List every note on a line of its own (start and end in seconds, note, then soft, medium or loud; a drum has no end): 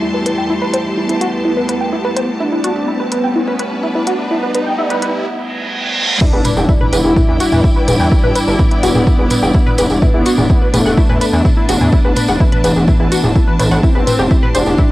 0.00 5.26 E2 medium
0.00 6.17 E2 medium
0.00 5.26 E3 medium
0.00 2.37 G3 medium
0.00 6.17 A3 medium
0.00 0.12 D4 medium
0.00 2.36 E4 medium
0.00 0.08 E4 medium
0.00 5.26 G4 medium
0.00 5.26 A5 medium
0.00 2.40 C6 medium
0.00 riser medium
0.14 0.20 B4 medium
0.26 0.32 B4 medium
0.26 closed hi-hat loud
0.26 mid tom medium
0.38 0.44 G5 medium
0.50 0.53 E4 loud
0.62 0.67 B4 loud
0.62 mid tom medium
0.74 0.77 C5 loud
0.74 closed hi-hat loud
0.97 2.31 B3 loud
0.97 1.01 E4 medium
0.97 mid tom medium
1.09 1.18 E4 medium
1.09 closed hi-hat medium
1.21 1.27 F#4 loud
1.21 closed hi-hat loud
1.33 mid tom medium
1.45 1.51 E4 medium
1.57 1.63 B4 medium
1.69 1.75 B4 medium
1.69 closed hi-hat loud
1.69 mid tom medium
1.81 1.87 G5 medium
1.93 1.96 E4 loud
2.05 2.10 B4 loud
2.05 mid tom medium
2.17 2.20 C5 loud
2.17 closed hi-hat loud
2.40 6.17 G3 medium
2.40 6.17 B3 medium
2.40 3.02 D4 loud
2.40 2.44 E4 medium
2.40 mid tom medium
2.52 2.61 E4 medium
2.64 2.70 F#4 loud
2.64 closed hi-hat loud
2.76 mid tom medium
2.88 2.94 E4 medium
3.00 3.06 B4 medium
3.12 3.74 B3 loud
3.12 3.17 B4 medium
3.12 closed hi-hat loud
3.12 mid tom medium
3.24 3.29 G5 medium
3.34 3.39 E4 loud
3.34 5.26 B4 medium
3.47 3.53 B4 loud
3.47 mid tom medium
3.59 3.63 B4 loud
3.59 closed hi-hat loud
3.83 3.87 E4 medium
3.83 mid tom medium
3.95 4.04 E4 medium
4.07 4.13 F#4 loud
4.07 closed hi-hat loud
4.19 mid tom medium
4.31 4.36 E4 medium
4.43 4.48 B4 medium
4.55 4.60 B4 medium
4.55 closed hi-hat loud
4.55 mid tom loud
4.66 4.72 G5 medium
4.78 5.26 G3 loud
4.78 4.82 E4 loud
4.90 4.96 B4 loud
4.90 closed hi-hat medium
4.90 mid tom loud
5.02 5.06 B4 loud
5.02 closed hi-hat loud
5.26 reverse cymbal medium
6.21 9.98 G3 medium
6.21 13.79 D4 medium
6.21 6.83 D4 loud
6.21 9.98 E4 medium
6.21 6.27 E4 medium
6.21 11.16 E4 medium
6.21 kick loud
6.21 crash loud
6.21 tambourine soft
6.21 impact medium
6.33 6.42 E1 medium
6.33 6.39 B4 medium
6.45 6.51 B4 medium
6.45 closed hi-hat loud
6.45 mid tom loud
6.45 tambourine medium
6.57 6.65 E1 medium
6.57 6.63 G5 medium
6.57 tambourine medium
6.69 6.72 E4 loud
6.69 kick loud
6.69 tambourine soft
6.81 6.87 B4 loud
6.81 11.55 D5 medium
6.81 10.02 G5 medium
6.81 mid tom medium
6.93 7.01 E1 medium
6.93 7.55 E4 loud
6.93 6.96 B4 loud
6.93 closed hi-hat loud
6.93 tambourine loud
7.05 7.13 E1 medium
7.05 tambourine soft
7.16 7.20 E4 medium
7.16 kick loud
7.16 mid tom loud
7.16 tambourine soft
7.28 7.37 E2 medium
7.28 7.37 E4 medium
7.40 7.46 F#4 loud
7.40 closed hi-hat loud
7.40 tambourine medium
7.52 7.61 E2 medium
7.52 mid tom loud
7.52 tambourine medium
7.64 7.70 E4 medium
7.64 kick loud
7.64 tambourine soft
7.76 7.82 B4 medium
7.88 7.96 E1 medium
7.88 7.94 B4 medium
7.88 closed hi-hat loud
7.88 mid tom loud
7.88 tambourine medium
8.00 8.08 E2 medium
8.00 8.06 G5 medium
8.00 tambourine soft
8.12 8.15 E4 loud
8.12 kick loud
8.12 tambourine soft
8.24 8.32 G1 medium
8.24 8.29 B4 loud
8.24 mid tom loud
8.35 8.39 B4 loud
8.35 closed hi-hat loud
8.35 tambourine medium
8.47 8.56 G1 medium
8.47 tambourine medium
8.59 9.93 B3 loud
8.59 8.63 E4 medium
8.59 kick loud
8.59 mid tom loud
8.59 tambourine soft
8.71 8.80 E4 medium
8.71 closed hi-hat medium
8.83 8.92 E1 loud
8.83 8.89 F#4 loud
8.83 closed hi-hat loud
8.83 tambourine loud
8.95 9.03 E1 medium
8.95 mid tom medium
8.95 tambourine medium
9.07 9.13 E4 medium
9.07 kick loud
9.07 tambourine soft
9.19 9.27 E1 medium
9.19 9.25 B4 medium
9.30 9.37 B4 medium
9.30 closed hi-hat loud
9.30 mid tom loud
9.30 tambourine loud
9.43 9.51 E1 medium
9.43 9.48 G5 medium
9.43 tambourine medium
9.53 9.58 E4 loud
9.53 kick loud
9.53 tambourine soft
9.66 9.72 B4 loud
9.66 mid tom loud
9.78 9.87 E1 loud
9.78 9.82 B4 loud
9.78 closed hi-hat loud
9.78 tambourine loud
9.90 9.99 E1 medium
9.90 tambourine medium
10.02 13.79 A3 medium
10.02 13.79 B3 medium
10.02 10.64 B3 loud
10.02 14.92 D4 medium
10.02 10.06 E4 medium
10.02 kick loud
10.02 mid tom medium
10.02 tambourine soft
10.14 10.23 E1 medium
10.14 10.23 E4 medium
10.26 10.32 F#4 loud
10.26 closed hi-hat loud
10.26 tambourine medium
10.37 10.46 E1 medium
10.37 13.83 B4 medium
10.37 mid tom loud
10.37 tambourine medium
10.50 10.56 E4 medium
10.50 kick loud
10.50 tambourine soft
10.62 10.67 B4 medium
10.74 10.82 E1 loud
10.74 11.36 A3 loud
10.74 10.79 B4 medium
10.74 closed hi-hat loud
10.74 mid tom loud
10.74 tambourine medium
10.86 10.94 E1 medium
10.86 10.91 F#5 medium
10.86 tambourine medium
10.97 11.01 E4 loud
10.97 14.92 A5 medium
10.97 kick loud
10.97 tambourine soft
11.09 11.18 E2 medium
11.09 11.15 B4 loud
11.09 mid tom loud
11.21 11.25 B4 loud
11.21 closed hi-hat loud
11.21 tambourine medium
11.33 11.42 E2 medium
11.33 tambourine medium
11.45 11.49 E4 medium
11.45 kick loud
11.45 mid tom loud
11.45 tambourine soft
11.57 11.66 E4 medium
11.69 11.77 E1 medium
11.69 11.75 F#4 loud
11.69 closed hi-hat loud
11.69 tambourine loud
11.81 11.89 E2 medium
11.81 mid tom medium
11.81 tambourine medium
11.92 11.98 E4 medium
11.92 kick loud
11.92 tambourine soft
12.05 12.13 E1 medium
12.05 12.10 B4 medium
12.16 12.22 B4 medium
12.16 closed hi-hat loud
12.16 mid tom medium
12.16 tambourine medium
12.28 12.37 E1 medium
12.28 12.34 F#5 medium
12.28 tambourine medium
12.40 13.74 E3 loud
12.40 12.44 E4 loud
12.40 kick loud
12.52 12.58 B4 loud
12.52 closed hi-hat medium
12.52 mid tom medium
12.64 12.73 E1 medium
12.64 12.68 B4 loud
12.64 closed hi-hat loud
12.64 tambourine medium
12.76 12.84 E1 medium
12.76 tambourine medium
12.88 12.91 E4 medium
12.88 kick loud
12.88 mid tom medium
12.88 tambourine soft
13.00 13.08 E1 medium
13.00 13.08 E4 medium
13.12 13.17 F#4 loud
13.12 closed hi-hat loud
13.12 tambourine loud
13.23 13.32 E1 medium
13.23 mid tom medium
13.23 tambourine medium
13.36 13.41 E4 medium
13.36 kick loud
13.36 tambourine soft
13.47 13.53 B4 medium
13.59 13.68 A1 medium
13.59 13.65 B4 medium
13.59 closed hi-hat loud
13.59 mid tom loud
13.59 tambourine medium
13.71 13.80 A1 medium
13.71 13.77 F#5 medium
13.71 tambourine medium
13.83 14.92 A3 medium
13.83 14.45 C4 loud
13.83 13.89 E4 medium
13.83 14.92 E4 medium
13.83 14.92 G4 medium
13.83 kick loud
13.83 tambourine soft
13.95 14.03 E1 medium
13.95 14.01 B4 medium
14.07 14.13 B4 medium
14.07 closed hi-hat loud
14.07 mid tom medium
14.07 tambourine loud
14.19 14.27 E1 medium
14.19 14.22 G4 loud
14.19 tambourine soft
14.31 14.34 E4 loud
14.31 14.92 C6 medium
14.31 kick loud
14.31 tambourine soft
14.43 14.48 B4 loud
14.43 mid tom medium
14.55 14.63 E1 medium
14.55 14.92 D4 loud
14.55 14.58 C5 loud
14.55 closed hi-hat loud
14.55 tambourine loud
14.66 14.75 E1 medium
14.66 tambourine medium
14.78 14.82 E4 medium
14.78 kick loud
14.78 mid tom medium
14.78 tambourine soft